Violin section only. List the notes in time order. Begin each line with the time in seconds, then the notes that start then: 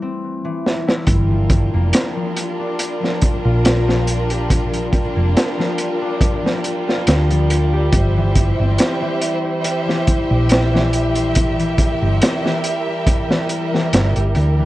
1.07 G3 D4 F4 A#4
7.92 G4 C5 E5
11.36 A#4